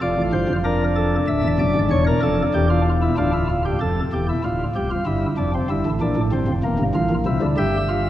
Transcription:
0.01 F1 F2 F4 D5
0.17 A1 A2
0.33 G1 G2 C5
0.49 F1 F2
0.64 D4 A#4
0.96 A4
1.28 D1 D2 E5
1.44 E1 E2
1.59 F#1 F#2 D5
1.75 G#1 G#2
1.91 E1 E2 C#5
2.07 A#4
2.23 F1 F2 A4
2.54 E1 E2 G4
2.70 F4
3.02 E4
3.18 D1 D2 D4 F4
3.33 E4
3.50 F4
3.65 G4
3.81 F1 F2 A4
4.13 E1 E2 G4
4.29 E4
4.44 D1 D2 F4
4.75 C1 C2 G4
4.91 F4
5.06 G1 G2 E4
5.37 F1 F2 D4
5.54 C4
5.69 G1 G2 E4
5.86 A1 A2
6.01 A#1 A#2 D4
6.16 A1 A2
6.32 G1 G2 C4
6.48 F1 F2
6.64 E1 E2 A#3
6.79 G1 G2
6.95 A1 A2 F4
7.10 A#1 A#2
7.26 C2 C3 E4
7.41 D2 D3
7.57 G1 G2 G4 E5
7.89 F4

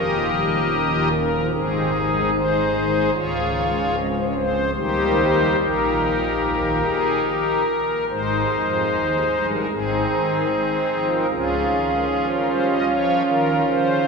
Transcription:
Already playing: D#1 D#2 G4 A#4 D#5
0.11 F4
0.31 G3
0.51 F3
0.72 C#4
0.91 F4
1.11 C#4 A#4
1.33 F3
1.52 G#1 G#2 C4 D#4 G#4
1.73 D#3
1.93 C4
2.13 G#3
2.32 D#3 D#4 G#4 C5
2.53 G#3
2.73 D#3
2.93 G#3
3.14 C#1 C#2 F4 G#4 C#5
3.34 G#3
3.53 F3
3.74 G#2
3.95 C4
3.99 D#5
4.06 C#5
4.14 G#3 C5
4.26 C#5
4.35 C4 C5
4.56 F3
4.75 D#2 D#3 G3 D#4 G4 C5
5.59 A#1 A#2 D#4 G4 A#4
6.42 D#1 D#2
6.84 G#4
7.25 A#4
8.09 G#1 G#2 G#3 D#4 C5
8.50 F2
8.90 D#2
9.31 G2
9.50 A#4
9.70 G#1 G#2 C4 D#4 G#4
10.11 D#3
10.51 G#3
10.91 F3
11.11 A#4
11.30 C#2 C#3 C#4 F4 G#4
11.71 D#3
12.10 F3
12.29 A#4
12.48 G3 C5
12.68 D#5
12.87 F3 C#5
13.27 D#3 A#4
13.68 C#3 C5

